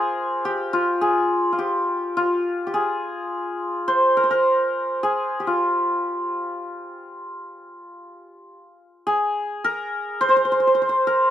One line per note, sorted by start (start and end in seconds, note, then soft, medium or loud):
0.00 0.73 F4 medium
0.00 0.51 G#4 medium
0.00 2.41 A#4 medium
0.00 1.92 C5 medium
0.45 1.07 G4 medium
0.73 1.52 F4 medium
1.01 1.65 G#4 medium
1.52 2.16 F4 medium
1.59 2.66 G4 medium
2.17 5.47 F4 medium
2.67 2.80 G4 medium
2.74 5.03 G#4 medium
3.88 4.23 C5 medium
4.17 4.30 A#4 medium
4.24 6.87 C5 medium
4.31 7.14 A#4 medium
5.03 5.46 G#4 medium
5.40 8.53 G4 medium
5.47 8.83 F4 medium
9.07 11.30 G#4 medium
9.64 11.07 A#4 loud
10.21 10.28 C5 loud
10.29 10.36 C5 medium
10.36 10.44 C5 medium
10.45 10.51 C5 medium
10.52 10.60 C5 medium
10.60 10.67 C5 medium
10.67 10.74 C5 medium
10.75 10.81 C5 medium
10.82 10.89 C5 medium
10.89 11.30 C5 medium
11.07 11.30 A#4 medium